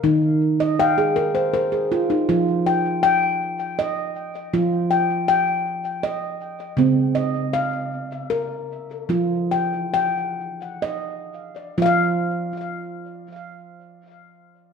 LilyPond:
<<
  \new Staff \with { instrumentName = "Handpan" } { \time 6/8 \key ees \mixolydian \tempo 4. = 53 << { r8. ees''16 f''16 aes'16 bes'16 c''16 bes'16 aes'16 f'16 ees'16~ | ees'16 r16 g''4. r4 | r8 g''4. r4 | r8 ees''4. r4 |
r8 g''4. r4 | r2. | } \\ { ees'4 g''4 c''4 | f'4 g''4 ees''4 | f'4 g''4 ees''4 | c'4 f''4 bes'4 |
f'4 g''4 ees''4 | r2. | } >> }
  \new Staff \with { instrumentName = "Handpan" } { \clef bass \time 6/8 \key ees \mixolydian ees2. | f2. | f2. | des2. |
f2. | <f f' f''>2. | }
>>